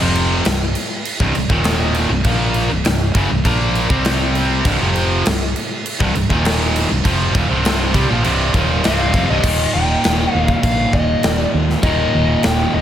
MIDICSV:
0, 0, Header, 1, 5, 480
1, 0, Start_track
1, 0, Key_signature, -3, "minor"
1, 0, Tempo, 598802
1, 1809, Time_signature, 4, 2, 24, 8
1, 10273, End_track
2, 0, Start_track
2, 0, Title_t, "Lead electric guitar"
2, 0, Program_c, 0, 29
2, 7091, Note_on_c, 0, 77, 86
2, 7455, Note_on_c, 0, 75, 92
2, 7462, Note_off_c, 0, 77, 0
2, 7788, Note_off_c, 0, 75, 0
2, 7803, Note_on_c, 0, 79, 105
2, 8300, Note_off_c, 0, 79, 0
2, 8300, Note_on_c, 0, 77, 105
2, 8496, Note_off_c, 0, 77, 0
2, 8529, Note_on_c, 0, 77, 78
2, 8754, Note_off_c, 0, 77, 0
2, 8763, Note_on_c, 0, 75, 86
2, 9084, Note_off_c, 0, 75, 0
2, 9084, Note_on_c, 0, 74, 86
2, 9216, Note_off_c, 0, 74, 0
2, 9481, Note_on_c, 0, 75, 90
2, 9969, Note_on_c, 0, 79, 113
2, 9982, Note_off_c, 0, 75, 0
2, 10205, Note_on_c, 0, 75, 91
2, 10218, Note_off_c, 0, 79, 0
2, 10273, Note_off_c, 0, 75, 0
2, 10273, End_track
3, 0, Start_track
3, 0, Title_t, "Distorted electric guitar"
3, 0, Program_c, 1, 30
3, 6, Note_on_c, 1, 41, 97
3, 12, Note_on_c, 1, 48, 97
3, 16, Note_on_c, 1, 53, 90
3, 360, Note_off_c, 1, 41, 0
3, 363, Note_off_c, 1, 48, 0
3, 366, Note_off_c, 1, 53, 0
3, 367, Note_on_c, 1, 36, 57
3, 373, Note_on_c, 1, 43, 72
3, 560, Note_off_c, 1, 36, 0
3, 563, Note_off_c, 1, 43, 0
3, 969, Note_on_c, 1, 36, 92
3, 974, Note_on_c, 1, 43, 111
3, 1079, Note_off_c, 1, 36, 0
3, 1083, Note_off_c, 1, 43, 0
3, 1089, Note_on_c, 1, 36, 64
3, 1092, Note_on_c, 1, 43, 76
3, 1208, Note_off_c, 1, 36, 0
3, 1211, Note_off_c, 1, 43, 0
3, 1211, Note_on_c, 1, 39, 93
3, 1217, Note_on_c, 1, 46, 104
3, 1217, Note_on_c, 1, 51, 101
3, 1683, Note_off_c, 1, 39, 0
3, 1686, Note_off_c, 1, 46, 0
3, 1686, Note_off_c, 1, 51, 0
3, 1692, Note_on_c, 1, 36, 65
3, 1697, Note_on_c, 1, 43, 81
3, 1806, Note_off_c, 1, 36, 0
3, 1809, Note_off_c, 1, 43, 0
3, 1809, Note_on_c, 1, 46, 110
3, 1812, Note_on_c, 1, 53, 96
3, 1819, Note_on_c, 1, 58, 100
3, 2162, Note_off_c, 1, 46, 0
3, 2163, Note_off_c, 1, 53, 0
3, 2166, Note_off_c, 1, 58, 0
3, 2170, Note_on_c, 1, 36, 67
3, 2173, Note_on_c, 1, 43, 80
3, 2283, Note_off_c, 1, 36, 0
3, 2285, Note_off_c, 1, 43, 0
3, 2293, Note_on_c, 1, 36, 60
3, 2294, Note_on_c, 1, 43, 78
3, 2483, Note_off_c, 1, 36, 0
3, 2483, Note_off_c, 1, 43, 0
3, 2532, Note_on_c, 1, 42, 98
3, 2536, Note_on_c, 1, 49, 108
3, 2643, Note_off_c, 1, 42, 0
3, 2645, Note_off_c, 1, 49, 0
3, 2654, Note_on_c, 1, 36, 68
3, 2656, Note_on_c, 1, 43, 71
3, 2765, Note_off_c, 1, 36, 0
3, 2768, Note_on_c, 1, 46, 88
3, 2770, Note_off_c, 1, 43, 0
3, 2773, Note_on_c, 1, 53, 119
3, 2776, Note_on_c, 1, 58, 108
3, 3121, Note_off_c, 1, 46, 0
3, 3124, Note_off_c, 1, 53, 0
3, 3125, Note_off_c, 1, 58, 0
3, 3127, Note_on_c, 1, 48, 94
3, 3130, Note_on_c, 1, 55, 110
3, 3133, Note_on_c, 1, 60, 101
3, 3721, Note_off_c, 1, 48, 0
3, 3722, Note_off_c, 1, 55, 0
3, 3724, Note_off_c, 1, 60, 0
3, 3728, Note_on_c, 1, 36, 106
3, 3733, Note_on_c, 1, 43, 123
3, 3841, Note_off_c, 1, 36, 0
3, 3844, Note_off_c, 1, 43, 0
3, 3850, Note_on_c, 1, 41, 86
3, 3855, Note_on_c, 1, 48, 98
3, 3859, Note_on_c, 1, 53, 106
3, 4202, Note_off_c, 1, 41, 0
3, 4205, Note_off_c, 1, 48, 0
3, 4207, Note_off_c, 1, 53, 0
3, 4209, Note_on_c, 1, 36, 74
3, 4215, Note_on_c, 1, 43, 75
3, 4401, Note_off_c, 1, 36, 0
3, 4404, Note_off_c, 1, 43, 0
3, 4812, Note_on_c, 1, 36, 107
3, 4816, Note_on_c, 1, 43, 107
3, 4923, Note_off_c, 1, 36, 0
3, 4925, Note_off_c, 1, 43, 0
3, 4932, Note_on_c, 1, 36, 69
3, 4934, Note_on_c, 1, 43, 81
3, 5042, Note_off_c, 1, 36, 0
3, 5046, Note_on_c, 1, 39, 97
3, 5047, Note_off_c, 1, 43, 0
3, 5050, Note_on_c, 1, 46, 92
3, 5054, Note_on_c, 1, 51, 102
3, 5520, Note_off_c, 1, 39, 0
3, 5522, Note_off_c, 1, 46, 0
3, 5525, Note_off_c, 1, 51, 0
3, 5531, Note_on_c, 1, 36, 67
3, 5534, Note_on_c, 1, 43, 82
3, 5646, Note_off_c, 1, 36, 0
3, 5649, Note_on_c, 1, 41, 104
3, 5652, Note_off_c, 1, 43, 0
3, 5656, Note_on_c, 1, 48, 104
3, 5659, Note_on_c, 1, 53, 117
3, 5882, Note_off_c, 1, 41, 0
3, 5885, Note_off_c, 1, 48, 0
3, 5885, Note_on_c, 1, 39, 89
3, 5887, Note_off_c, 1, 53, 0
3, 5891, Note_on_c, 1, 46, 100
3, 6000, Note_off_c, 1, 39, 0
3, 6003, Note_off_c, 1, 46, 0
3, 6007, Note_on_c, 1, 36, 85
3, 6010, Note_on_c, 1, 43, 97
3, 6014, Note_on_c, 1, 48, 102
3, 6357, Note_off_c, 1, 48, 0
3, 6361, Note_off_c, 1, 36, 0
3, 6363, Note_off_c, 1, 43, 0
3, 6367, Note_on_c, 1, 48, 108
3, 6371, Note_on_c, 1, 55, 116
3, 6481, Note_off_c, 1, 48, 0
3, 6483, Note_off_c, 1, 55, 0
3, 6485, Note_on_c, 1, 46, 82
3, 6494, Note_on_c, 1, 53, 100
3, 6600, Note_off_c, 1, 46, 0
3, 6604, Note_on_c, 1, 36, 91
3, 6605, Note_off_c, 1, 53, 0
3, 6610, Note_on_c, 1, 43, 109
3, 6612, Note_on_c, 1, 48, 119
3, 6840, Note_off_c, 1, 36, 0
3, 6843, Note_off_c, 1, 43, 0
3, 6844, Note_off_c, 1, 48, 0
3, 6846, Note_on_c, 1, 39, 99
3, 6850, Note_on_c, 1, 46, 103
3, 6856, Note_on_c, 1, 51, 102
3, 7081, Note_off_c, 1, 39, 0
3, 7083, Note_off_c, 1, 46, 0
3, 7086, Note_off_c, 1, 51, 0
3, 7086, Note_on_c, 1, 36, 102
3, 7088, Note_on_c, 1, 43, 101
3, 7093, Note_on_c, 1, 48, 115
3, 7321, Note_off_c, 1, 36, 0
3, 7322, Note_off_c, 1, 43, 0
3, 7325, Note_off_c, 1, 48, 0
3, 7327, Note_on_c, 1, 41, 100
3, 7333, Note_on_c, 1, 48, 116
3, 7441, Note_off_c, 1, 41, 0
3, 7445, Note_off_c, 1, 48, 0
3, 7450, Note_on_c, 1, 36, 85
3, 7455, Note_on_c, 1, 43, 107
3, 7561, Note_off_c, 1, 36, 0
3, 7564, Note_on_c, 1, 39, 106
3, 7566, Note_off_c, 1, 43, 0
3, 7579, Note_on_c, 1, 46, 102
3, 7589, Note_on_c, 1, 51, 106
3, 9475, Note_off_c, 1, 39, 0
3, 9482, Note_off_c, 1, 46, 0
3, 9483, Note_on_c, 1, 39, 96
3, 9487, Note_off_c, 1, 51, 0
3, 9495, Note_on_c, 1, 46, 99
3, 9504, Note_on_c, 1, 51, 96
3, 10273, Note_off_c, 1, 39, 0
3, 10273, Note_off_c, 1, 46, 0
3, 10273, Note_off_c, 1, 51, 0
3, 10273, End_track
4, 0, Start_track
4, 0, Title_t, "Fingered electric bass"
4, 0, Program_c, 2, 33
4, 10, Note_on_c, 2, 29, 89
4, 344, Note_off_c, 2, 29, 0
4, 366, Note_on_c, 2, 24, 80
4, 591, Note_off_c, 2, 24, 0
4, 964, Note_on_c, 2, 24, 93
4, 1078, Note_off_c, 2, 24, 0
4, 1086, Note_on_c, 2, 24, 82
4, 1196, Note_off_c, 2, 24, 0
4, 1201, Note_on_c, 2, 27, 111
4, 1653, Note_off_c, 2, 27, 0
4, 1681, Note_on_c, 2, 24, 81
4, 1796, Note_off_c, 2, 24, 0
4, 1804, Note_on_c, 2, 34, 100
4, 2141, Note_off_c, 2, 34, 0
4, 2171, Note_on_c, 2, 24, 80
4, 2281, Note_off_c, 2, 24, 0
4, 2295, Note_on_c, 2, 24, 83
4, 2515, Note_off_c, 2, 24, 0
4, 2524, Note_on_c, 2, 30, 98
4, 2638, Note_off_c, 2, 30, 0
4, 2652, Note_on_c, 2, 24, 91
4, 2762, Note_off_c, 2, 24, 0
4, 2767, Note_on_c, 2, 34, 107
4, 3103, Note_off_c, 2, 34, 0
4, 3129, Note_on_c, 2, 36, 104
4, 3697, Note_off_c, 2, 36, 0
4, 3729, Note_on_c, 2, 24, 91
4, 3841, Note_off_c, 2, 24, 0
4, 3856, Note_on_c, 2, 29, 86
4, 4187, Note_off_c, 2, 29, 0
4, 4221, Note_on_c, 2, 24, 84
4, 4439, Note_off_c, 2, 24, 0
4, 4812, Note_on_c, 2, 24, 92
4, 4922, Note_off_c, 2, 24, 0
4, 4937, Note_on_c, 2, 24, 93
4, 5045, Note_off_c, 2, 24, 0
4, 5054, Note_on_c, 2, 27, 92
4, 5500, Note_off_c, 2, 27, 0
4, 5540, Note_on_c, 2, 24, 91
4, 5646, Note_off_c, 2, 24, 0
4, 5653, Note_on_c, 2, 29, 83
4, 5875, Note_off_c, 2, 29, 0
4, 5891, Note_on_c, 2, 27, 102
4, 6002, Note_off_c, 2, 27, 0
4, 6014, Note_on_c, 2, 24, 110
4, 6347, Note_off_c, 2, 24, 0
4, 6367, Note_on_c, 2, 36, 101
4, 6480, Note_off_c, 2, 36, 0
4, 6497, Note_on_c, 2, 34, 104
4, 6605, Note_off_c, 2, 34, 0
4, 6617, Note_on_c, 2, 24, 105
4, 6837, Note_off_c, 2, 24, 0
4, 6847, Note_on_c, 2, 27, 98
4, 7072, Note_off_c, 2, 27, 0
4, 7097, Note_on_c, 2, 24, 89
4, 7317, Note_off_c, 2, 24, 0
4, 7326, Note_on_c, 2, 29, 89
4, 7440, Note_off_c, 2, 29, 0
4, 7454, Note_on_c, 2, 24, 104
4, 7560, Note_off_c, 2, 24, 0
4, 7565, Note_on_c, 2, 27, 92
4, 7731, Note_off_c, 2, 27, 0
4, 7813, Note_on_c, 2, 27, 100
4, 7976, Note_off_c, 2, 27, 0
4, 8056, Note_on_c, 2, 27, 96
4, 8218, Note_off_c, 2, 27, 0
4, 8290, Note_on_c, 2, 27, 89
4, 8454, Note_off_c, 2, 27, 0
4, 8526, Note_on_c, 2, 34, 105
4, 8692, Note_off_c, 2, 34, 0
4, 8763, Note_on_c, 2, 27, 91
4, 8930, Note_off_c, 2, 27, 0
4, 9008, Note_on_c, 2, 27, 86
4, 9173, Note_off_c, 2, 27, 0
4, 9250, Note_on_c, 2, 39, 100
4, 9414, Note_off_c, 2, 39, 0
4, 9485, Note_on_c, 2, 27, 85
4, 9651, Note_off_c, 2, 27, 0
4, 9734, Note_on_c, 2, 27, 99
4, 9897, Note_off_c, 2, 27, 0
4, 9974, Note_on_c, 2, 27, 94
4, 10137, Note_off_c, 2, 27, 0
4, 10209, Note_on_c, 2, 27, 92
4, 10273, Note_off_c, 2, 27, 0
4, 10273, End_track
5, 0, Start_track
5, 0, Title_t, "Drums"
5, 124, Note_on_c, 9, 49, 69
5, 204, Note_off_c, 9, 49, 0
5, 361, Note_on_c, 9, 49, 89
5, 370, Note_on_c, 9, 38, 110
5, 441, Note_off_c, 9, 49, 0
5, 450, Note_off_c, 9, 38, 0
5, 602, Note_on_c, 9, 49, 74
5, 682, Note_off_c, 9, 49, 0
5, 844, Note_on_c, 9, 49, 83
5, 924, Note_off_c, 9, 49, 0
5, 963, Note_on_c, 9, 36, 111
5, 1043, Note_off_c, 9, 36, 0
5, 1082, Note_on_c, 9, 49, 69
5, 1162, Note_off_c, 9, 49, 0
5, 1201, Note_on_c, 9, 36, 127
5, 1282, Note_off_c, 9, 36, 0
5, 1316, Note_on_c, 9, 49, 82
5, 1325, Note_on_c, 9, 38, 124
5, 1396, Note_off_c, 9, 49, 0
5, 1406, Note_off_c, 9, 38, 0
5, 1560, Note_on_c, 9, 49, 67
5, 1640, Note_off_c, 9, 49, 0
5, 1800, Note_on_c, 9, 49, 87
5, 1802, Note_on_c, 9, 36, 121
5, 1880, Note_off_c, 9, 49, 0
5, 1882, Note_off_c, 9, 36, 0
5, 2037, Note_on_c, 9, 49, 65
5, 2118, Note_off_c, 9, 49, 0
5, 2282, Note_on_c, 9, 49, 76
5, 2292, Note_on_c, 9, 38, 113
5, 2363, Note_off_c, 9, 49, 0
5, 2372, Note_off_c, 9, 38, 0
5, 2524, Note_on_c, 9, 49, 66
5, 2525, Note_on_c, 9, 36, 118
5, 2604, Note_off_c, 9, 49, 0
5, 2605, Note_off_c, 9, 36, 0
5, 2765, Note_on_c, 9, 49, 75
5, 2766, Note_on_c, 9, 36, 115
5, 2846, Note_off_c, 9, 36, 0
5, 2846, Note_off_c, 9, 49, 0
5, 3008, Note_on_c, 9, 49, 60
5, 3089, Note_off_c, 9, 49, 0
5, 3127, Note_on_c, 9, 36, 122
5, 3207, Note_off_c, 9, 36, 0
5, 3244, Note_on_c, 9, 49, 83
5, 3254, Note_on_c, 9, 38, 123
5, 3324, Note_off_c, 9, 49, 0
5, 3334, Note_off_c, 9, 38, 0
5, 3488, Note_on_c, 9, 49, 72
5, 3568, Note_off_c, 9, 49, 0
5, 3727, Note_on_c, 9, 49, 88
5, 3728, Note_on_c, 9, 36, 119
5, 3807, Note_off_c, 9, 49, 0
5, 3809, Note_off_c, 9, 36, 0
5, 3972, Note_on_c, 9, 49, 71
5, 4052, Note_off_c, 9, 49, 0
5, 4213, Note_on_c, 9, 49, 86
5, 4223, Note_on_c, 9, 38, 122
5, 4293, Note_off_c, 9, 49, 0
5, 4303, Note_off_c, 9, 38, 0
5, 4455, Note_on_c, 9, 49, 65
5, 4535, Note_off_c, 9, 49, 0
5, 4695, Note_on_c, 9, 49, 94
5, 4775, Note_off_c, 9, 49, 0
5, 4813, Note_on_c, 9, 36, 117
5, 4893, Note_off_c, 9, 36, 0
5, 4933, Note_on_c, 9, 49, 66
5, 5013, Note_off_c, 9, 49, 0
5, 5052, Note_on_c, 9, 36, 107
5, 5132, Note_off_c, 9, 36, 0
5, 5172, Note_on_c, 9, 49, 100
5, 5181, Note_on_c, 9, 38, 117
5, 5252, Note_off_c, 9, 49, 0
5, 5262, Note_off_c, 9, 38, 0
5, 5305, Note_on_c, 9, 38, 37
5, 5386, Note_off_c, 9, 38, 0
5, 5417, Note_on_c, 9, 49, 76
5, 5426, Note_on_c, 9, 38, 39
5, 5497, Note_off_c, 9, 49, 0
5, 5507, Note_off_c, 9, 38, 0
5, 5652, Note_on_c, 9, 36, 121
5, 5654, Note_on_c, 9, 49, 90
5, 5732, Note_off_c, 9, 36, 0
5, 5734, Note_off_c, 9, 49, 0
5, 5891, Note_on_c, 9, 36, 127
5, 5892, Note_on_c, 9, 49, 64
5, 5971, Note_off_c, 9, 36, 0
5, 5973, Note_off_c, 9, 49, 0
5, 6132, Note_on_c, 9, 49, 88
5, 6142, Note_on_c, 9, 38, 123
5, 6212, Note_off_c, 9, 49, 0
5, 6222, Note_off_c, 9, 38, 0
5, 6368, Note_on_c, 9, 36, 117
5, 6370, Note_on_c, 9, 49, 68
5, 6448, Note_off_c, 9, 36, 0
5, 6450, Note_off_c, 9, 49, 0
5, 6609, Note_on_c, 9, 49, 76
5, 6689, Note_off_c, 9, 49, 0
5, 6847, Note_on_c, 9, 36, 108
5, 6849, Note_on_c, 9, 49, 61
5, 6927, Note_off_c, 9, 36, 0
5, 6930, Note_off_c, 9, 49, 0
5, 7086, Note_on_c, 9, 49, 87
5, 7096, Note_on_c, 9, 38, 108
5, 7167, Note_off_c, 9, 49, 0
5, 7176, Note_off_c, 9, 38, 0
5, 7325, Note_on_c, 9, 36, 119
5, 7329, Note_on_c, 9, 49, 63
5, 7406, Note_off_c, 9, 36, 0
5, 7409, Note_off_c, 9, 49, 0
5, 7564, Note_on_c, 9, 36, 119
5, 7565, Note_on_c, 9, 49, 72
5, 7565, Note_on_c, 9, 57, 125
5, 7644, Note_off_c, 9, 36, 0
5, 7645, Note_off_c, 9, 49, 0
5, 7645, Note_off_c, 9, 57, 0
5, 8048, Note_on_c, 9, 49, 72
5, 8057, Note_on_c, 9, 38, 118
5, 8128, Note_off_c, 9, 49, 0
5, 8137, Note_off_c, 9, 38, 0
5, 8404, Note_on_c, 9, 36, 96
5, 8484, Note_off_c, 9, 36, 0
5, 8524, Note_on_c, 9, 36, 111
5, 8526, Note_on_c, 9, 49, 73
5, 8604, Note_off_c, 9, 36, 0
5, 8606, Note_off_c, 9, 49, 0
5, 8764, Note_on_c, 9, 36, 83
5, 8844, Note_off_c, 9, 36, 0
5, 9002, Note_on_c, 9, 49, 68
5, 9012, Note_on_c, 9, 38, 109
5, 9082, Note_off_c, 9, 49, 0
5, 9092, Note_off_c, 9, 38, 0
5, 9376, Note_on_c, 9, 38, 35
5, 9456, Note_off_c, 9, 38, 0
5, 9484, Note_on_c, 9, 36, 120
5, 9485, Note_on_c, 9, 49, 66
5, 9564, Note_off_c, 9, 36, 0
5, 9565, Note_off_c, 9, 49, 0
5, 9964, Note_on_c, 9, 49, 61
5, 9973, Note_on_c, 9, 38, 109
5, 10044, Note_off_c, 9, 49, 0
5, 10053, Note_off_c, 9, 38, 0
5, 10273, End_track
0, 0, End_of_file